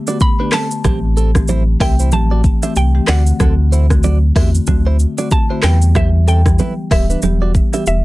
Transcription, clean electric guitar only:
0.08 0.18 F#4 medium
0.08 0.17 D5 medium
0.40 0.50 D4 medium
0.40 0.49 B4 medium
0.53 0.67 C4 medium
0.53 0.66 A4 medium
0.85 0.99 C4 medium
0.85 0.98 G4 loud
1.17 1.31 C4 medium
1.17 1.30 A4 medium
1.49 1.63 E4 medium
1.49 1.62 C5 medium
1.81 1.95 G4 medium
1.81 1.94 E5 medium
1.99 2.09 E4 medium
1.99 2.09 C5 medium
2.31 2.41 F#4 medium
2.31 2.41 D5 medium
2.63 2.73 G4 medium
2.63 2.73 E5 medium
3.08 3.22 F#4 medium
3.08 3.22 D5 medium
3.40 3.54 C4 medium
3.40 3.54 A4 loud
3.72 3.86 E4 medium
3.72 3.85 C5 medium
4.04 4.18 F#4 medium
4.04 4.17 D5 medium
4.36 4.50 G4 medium
4.36 4.49 E5 medium
4.86 4.97 E4 medium
4.86 4.96 C5 medium
5.18 5.28 F#4 medium
5.18 5.28 D5 medium
5.50 5.60 E4 medium
5.50 5.60 C5 medium
5.64 5.78 E4 medium
5.64 5.77 B4 medium
5.96 6.09 B3 medium
5.96 6.09 G4 loud
6.28 6.41 C4 medium
6.28 6.41 A4 medium
6.59 6.73 E4 medium
6.59 6.73 B4 medium
6.91 7.05 G4 medium
6.91 7.05 E5 medium
7.10 7.20 D4 medium
7.10 7.19 B4 medium
7.42 7.52 F#4 medium
7.42 7.51 D5 medium
7.74 7.84 G4 medium
7.74 7.83 E5 medium

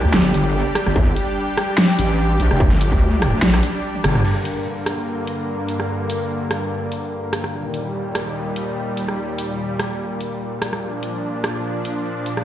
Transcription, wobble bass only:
0.04 0.12 D2 loud
0.14 0.33 G1 loud
0.34 0.64 G1 loud
0.86 0.94 G1 loud
0.96 1.15 G1 loud
1.99 2.38 A1 loud
2.40 2.49 A#1 loud
2.51 2.70 F1 loud
2.71 2.90 G1 loud
2.92 3.31 D2 loud
3.33 3.41 D2 loud
3.43 3.62 A#1 loud
4.04 4.23 G1 loud

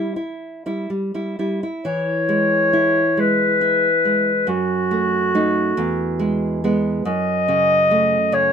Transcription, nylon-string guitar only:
0.00 0.14 G3 soft
0.00 0.14 E4 soft
0.16 0.65 E4 soft
0.66 0.88 G3 soft
0.66 0.88 E4 soft
0.90 1.13 G3 soft
1.14 1.37 G3 soft
1.14 1.37 E4 soft
1.39 1.60 G3 soft
1.39 1.61 E4 soft
1.63 1.85 E4 soft
1.85 4.45 E3 soft
2.29 3.01 G#3 soft
2.73 3.45 E4 soft
3.17 3.88 G#3 soft
3.61 4.31 E4 soft
4.05 4.48 G#3 soft
4.47 5.73 F#2 soft
4.91 5.33 A3 soft
5.35 5.73 A3 soft
5.35 5.74 D#4 soft
5.77 7.02 E2 medium
6.19 6.63 G#3 soft
6.64 7.02 G#3 soft
6.64 7.03 B3 soft
7.05 8.53 F#2 soft
7.48 8.16 C#3 soft
7.91 8.53 A3 soft
8.32 8.53 C#3 soft

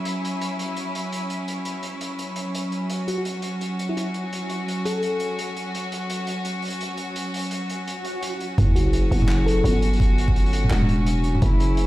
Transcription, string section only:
0.00 8.54 F#3 medium
0.00 8.54 C#4 medium
0.00 2.88 E4 medium
2.90 8.56 F#4 medium
8.59 11.87 F#3 medium
8.59 11.87 C#4 medium
8.59 11.42 F#4 medium
11.42 11.87 E4 medium

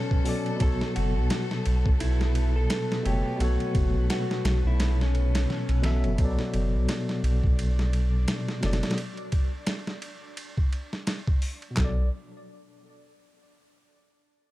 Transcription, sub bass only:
0.61 0.79 B1 loud
0.96 1.18 F#1 medium
1.16 1.29 B1 medium
1.66 1.84 B1 loud
1.86 2.67 B1 medium
3.05 3.23 F#1 loud
3.40 3.58 B1 loud
3.75 3.97 F#1 medium
3.95 4.08 B1 medium
4.45 4.62 B1 medium
4.64 5.46 B1 medium
5.69 5.82 B1 medium
5.83 6.05 B1 loud
6.04 6.17 F#1 loud
6.19 6.37 B1 loud
6.54 6.76 F#1 medium
6.74 6.87 B1 medium
7.23 7.41 B1 medium
7.44 8.25 B1 medium
8.63 8.81 F#1 medium
11.78 12.10 B1 medium

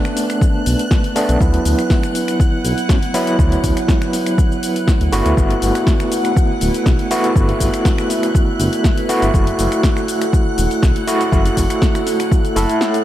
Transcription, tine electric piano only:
0.00 1.13 A3 medium
0.00 1.13 B3 medium
0.00 1.13 D4 medium
1.16 1.38 A3 loud
1.16 1.38 B3 medium
1.16 1.38 D4 loud
1.40 3.11 F#3 medium
1.40 3.11 B3 medium
1.40 3.12 E4 medium
3.14 3.36 F#3 medium
3.14 3.36 B3 medium
3.14 3.36 E4 loud
5.12 5.34 A3 loud
5.12 5.34 B3 medium
5.12 5.35 E4 medium
5.12 5.35 F#4 loud
5.37 7.08 A3 medium
5.37 7.08 B3 medium
5.37 7.08 E4 medium
5.37 7.08 F#4 medium
7.11 7.33 A3 loud
7.11 7.33 B3 medium
7.11 7.33 E4 medium
7.11 7.33 F#4 loud
7.35 9.06 B3 medium
7.35 9.06 E4 medium
9.09 9.31 A3 loud
9.09 9.31 B3 medium
9.09 9.31 E4 medium
9.09 9.31 F#4 loud
9.34 11.05 E4 medium
9.34 11.05 F#4 medium
11.07 11.29 A3 loud
11.07 11.30 E4 medium
11.07 11.30 F#4 loud
11.32 12.54 A3 medium
11.32 12.54 E4 medium
11.32 12.54 F#4 medium
12.56 13.04 A3 loud
12.56 13.04 E4 medium
12.56 13.04 A4 loud

